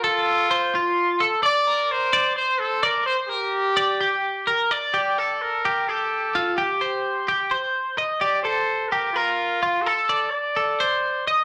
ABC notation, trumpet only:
X:1
M:7/8
L:1/8
Q:1/4=128
K:Gm
V:1 name="Trumpet"
F4 z2 d- | d c2 c A B c | G4- G z2 | d2 B2 A3 |
G4 z3 | d c2 B F3 | A2 d4 z |]